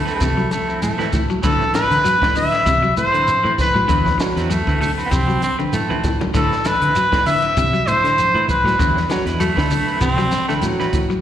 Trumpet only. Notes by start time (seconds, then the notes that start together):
1.44 A4
1.75 B4
2.37 E5
2.98 C5
3.61 B4
6.37 A4
6.67 B4
7.26 E5
7.88 C5
8.49 B4